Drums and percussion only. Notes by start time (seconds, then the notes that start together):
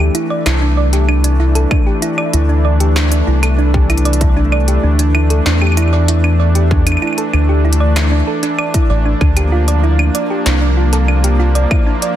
0.15 closed hi-hat
0.46 snare, closed hi-hat, claves
0.93 closed hi-hat
1.09 claves
1.24 closed hi-hat
1.55 closed hi-hat
1.71 kick, claves
2.02 closed hi-hat
2.18 claves
2.33 closed hi-hat
2.80 closed hi-hat
2.96 snare, claves
3.12 closed hi-hat
3.43 closed hi-hat, claves
3.74 kick
3.90 closed hi-hat, claves
3.98 closed hi-hat
4.05 closed hi-hat
4.13 closed hi-hat
4.21 kick, closed hi-hat
4.52 claves
4.68 closed hi-hat
4.99 closed hi-hat
5.15 claves
5.30 closed hi-hat
5.46 snare
5.62 claves
5.67 claves
5.72 claves
5.77 closed hi-hat, claves
5.82 claves
5.88 claves
6.08 closed hi-hat
6.24 claves
6.55 closed hi-hat
6.71 kick
6.87 closed hi-hat, claves
6.92 claves
6.97 claves
7.02 claves
7.07 claves
7.13 claves
7.18 closed hi-hat
7.34 claves
7.73 closed hi-hat
7.96 snare, closed hi-hat, claves
8.43 closed hi-hat
8.59 claves
8.74 kick, closed hi-hat
9.21 kick, claves
9.37 closed hi-hat, claves
9.68 closed hi-hat
9.99 claves
10.15 closed hi-hat
10.46 snare, closed hi-hat, claves
10.93 closed hi-hat
11.08 claves
11.24 closed hi-hat
11.55 closed hi-hat
11.71 kick, claves
12.02 closed hi-hat